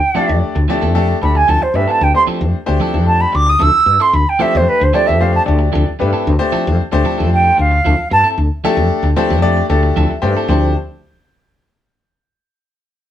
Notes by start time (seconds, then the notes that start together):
Already playing: G5
0.15 F3 A3 C4 D4 E4 G4 A4 D5, muted fretless electric bass stroke
0.29 F2, muted clean electric guitar stroke
0.44 muted fretless electric bass stroke
0.55 D2, muted clean electric guitar stroke
0.68 F3 A3 C4 D4 E4 G4 A4 D5
0.81 F2 F3 C4 E4 A4
0.95 A3 D4 G4 A4, muted clean electric guitar stroke
1.09 muted clean electric guitar stroke
1.22 D2 A3 D4 G4 A4 B5, muted clean electric guitar stroke
1.35 G#5, muted clean electric guitar stroke
1.48 D2 F3 C4 E4 A4 A5
1.61 C5, muted clean electric guitar stroke
1.74 G2 A3 D4 G4 B4 E5, muted clean electric guitar stroke
1.88 C4 E4 A4 A5
2.01 D2 G5
2.14 A3 D4 G4 C5 C6
2.27 F3 C4 E4 A4, muted fretless electric bass stroke
2.41 F2, muted clean electric guitar stroke
2.53 muted fretless electric bass stroke
2.66 D2 A3 D4 G4 C5, muted clean electric guitar stroke
2.80 F3 C4 E4 A4, muted fretless electric bass stroke
2.94 F2 F3 C4 E4 A4
3.06 A5, muted clean electric guitar stroke
3.20 B5, muted clean electric guitar stroke
3.32 D2 D6, muted clean electric guitar stroke
3.46 D#6, muted clean electric guitar stroke
3.59 D2 F3 C4 E4 A4 E6
3.73 muted clean electric guitar stroke, muted fretless electric bass stroke
3.86 G2, muted clean electric guitar stroke
4.00 C4 E4 A4 C6
4.13 D2 B5
4.29 G5
4.39 F3 A3 C4 D4 E4 G4 A4 C5 E5, muted fretless electric bass stroke
4.53 F2 C5, muted clean electric guitar stroke
4.69 B4
4.80 D2 C5, muted clean electric guitar stroke
4.93 F3 A3 C4 D4 E4 G4 A4 C5 D5, muted fretless electric bass stroke
5.06 F2 F3 C4 E4 A4 E5
5.19 A3 D4 G4 C5 F5, muted clean electric guitar stroke
5.33 A5, muted clean electric guitar stroke
5.46 D2 A3 D4 G4 D5, muted clean electric guitar stroke
5.59 muted clean electric guitar stroke
5.72 D2 F3 C4 E4 A4
5.86 muted clean electric guitar stroke, muted fretless electric bass stroke
5.99 G2 A3 D4 G4 B4, muted clean electric guitar stroke
6.13 C4 E4 A4
6.27 D2
6.39 A3 D4 G4 C5
6.52 F3 C4 E4 A4, muted fretless electric bass stroke
6.66 F2, muted clean electric guitar stroke
6.80 muted fretless electric bass stroke
6.92 D2 A3 D4 G4 C5, muted clean electric guitar stroke
7.04 F3 C4 E4 A4
7.18 F2 F3 C4 E4 A4
7.31 G5, muted clean electric guitar stroke
7.44 muted clean electric guitar stroke
7.58 D2 F5, muted clean electric guitar stroke
7.71 muted clean electric guitar stroke
7.85 D2 F3 C4 E4 A4
7.97 muted clean electric guitar stroke, muted fretless electric bass stroke
8.11 G2 A5, muted clean electric guitar stroke
8.24 C4 E4 A4
8.38 D2
8.63 F3 A3 C4 D4 E4 G4 A4, muted fretless electric bass stroke
8.77 F2, muted clean electric guitar stroke
8.90 muted fretless electric bass stroke
9.03 D2, muted clean electric guitar stroke
9.16 F3 A3 C4 D4 E4 G4 A4 C5
9.30 F2 F3 C4 E4 A4
9.42 A3 D4 G4 D5
9.57 muted clean electric guitar stroke
9.70 D2 A3 D4 G4 A4, muted clean electric guitar stroke
9.83 muted clean electric guitar stroke
9.96 D2 F3 C4 E4 A4 E5
10.10 muted fretless electric bass stroke, muted clean electric guitar stroke
10.22 G2 A3 D4 G4 C5 G5, muted clean electric guitar stroke
10.37 C4 E4 A4
10.48 D2 F3 A3 C4 D4 E4 G4 A4 C5